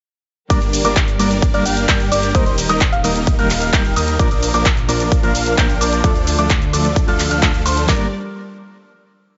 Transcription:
0.50 G1 G3 A#3 D4 G4 A#4 D5 D6, kick, closed hi-hat, shaker
0.62 closed hi-hat, shaker
0.73 open hi-hat, shaker
0.84 G1 G3 A#3 D4 A#4 D5 D6, closed hi-hat, shaker
0.96 kick, clap, closed hi-hat, shaker
1.08 closed hi-hat, shaker
1.19 G1 G3 A#3 D4 A#4 D5 D6, open hi-hat, shaker
1.31 closed hi-hat, shaker
1.42 kick, closed hi-hat, shaker
1.53 G1 G3 A#3 D4 A#4 D5 F5 F6, closed hi-hat, shaker
1.66 G5, open hi-hat, shaker
1.77 closed hi-hat, shaker
1.88 G2 G3 A#3 D4 A#4 G5 G6, kick, clap, closed hi-hat, shaker
2.00 closed hi-hat, shaker
2.12 G1 G3 A#3 D4 A#4 D5 D6, open hi-hat, shaker
2.23 closed hi-hat, shaker
2.34 D#1 D#3 G3 A#3 D#4 A#4 C5 D#5 D#6, kick, closed hi-hat, shaker
2.46 C5, closed hi-hat, shaker
2.58 open hi-hat, shaker
2.69 D#1 G3 A#3 D#4 A#4 D#5 D#6, closed hi-hat, shaker
2.81 kick, clap, closed hi-hat, shaker
2.93 F5, closed hi-hat, shaker
3.04 D#1 G3 A#3 D#4 A#4 D#5 F5 D#6, open hi-hat, shaker
3.16 closed hi-hat, shaker
3.27 kick, closed hi-hat, shaker
3.38 D#1 G3 A#3 D#4 A#4 F5 F6, closed hi-hat, shaker
3.50 clap, open hi-hat, shaker
3.62 closed hi-hat, shaker
3.73 D#1 G3 A#3 D#4 A#4 G6, kick, clap, closed hi-hat, shaker
3.85 closed hi-hat, shaker
3.96 D#2 G3 A#3 D#4 A#4 D#5 D#6, open hi-hat, shaker
4.08 closed hi-hat, shaker
4.19 A#1 F3 A#3 D4 F4 A#4 D5 D6, kick, closed hi-hat, shaker
4.31 closed hi-hat, shaker
4.43 open hi-hat, shaker
4.54 A#1 F3 A#3 D4 A#4 D5 D6, closed hi-hat, shaker
4.66 kick, clap, closed hi-hat, shaker
4.77 closed hi-hat, shaker
4.88 A#1 F3 A#3 D4 A#4 D5 D6, open hi-hat, shaker
5.00 closed hi-hat, shaker
5.12 kick, closed hi-hat, shaker
5.23 A#1 F3 A#3 D4 A#4 F5 F6, closed hi-hat, shaker
5.35 open hi-hat, shaker
5.46 closed hi-hat, shaker
5.57 A#1 F3 A#3 D4 A#4 G5, kick, clap, closed hi-hat, shaker
5.70 closed hi-hat, shaker
5.81 A#1 F3 A#3 D4 A#4 D5 D6, open hi-hat, shaker
5.93 closed hi-hat, shaker
6.04 D2 D3 F3 A3 D4 A4 D5 D6, kick, closed hi-hat, shaker
6.16 closed hi-hat, shaker
6.27 open hi-hat, shaker
6.38 D2 F3 A3 D4 A4 D5 D6, closed hi-hat, shaker
6.50 kick, clap, closed hi-hat, shaker
6.62 closed hi-hat, shaker
6.73 D2 F3 A3 D4 A4 D5 D6, open hi-hat, shaker
6.85 closed hi-hat, shaker
6.96 kick, closed hi-hat, shaker
7.07 D2 F3 A3 D4 A4 F5 F6, closed hi-hat, shaker
7.19 clap, open hi-hat, shaker
7.31 D2 F3 A3 D4 A4 F5 F6, closed hi-hat, shaker
7.42 F3 A3 D4 A4, kick, clap, closed hi-hat, shaker
7.54 closed hi-hat, shaker
7.66 D2 F3 A3 D4 A4 C5 C6, open hi-hat, shaker
7.77 closed hi-hat, shaker
7.87 G1 G3 A#3 D4 G4 A#4 D5 D6, kick, snare, clap

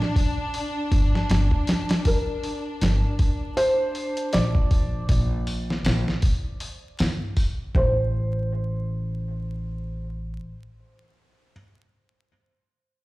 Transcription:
Already playing: D4
0.02 snare
0.16 kick, open hi-hat
0.54 open hi-hat
0.92 G1, kick, open hi-hat
1.15 snare
1.30 G1, snare, open hi-hat
1.51 kick
1.67 snare, open hi-hat
1.89 snare, open hi-hat
2.05 A#4, kick, open hi-hat
2.44 open hi-hat
2.81 G1, snare, open hi-hat
3.19 kick, open hi-hat
3.57 C5, open hi-hat
3.95 open hi-hat
4.17 closed hi-hat
4.33 A#1 D5, snare, open hi-hat
4.55 kick
4.71 kick, open hi-hat
5.09 A#1, kick, open hi-hat
5.47 open hi-hat
5.70 snare
5.85 A#1, snare, open hi-hat
6.08 snare
6.22 kick, open hi-hat
6.60 open hi-hat
6.99 G1, snare, open hi-hat
7.37 kick, open hi-hat
7.75 A1 C5, kick

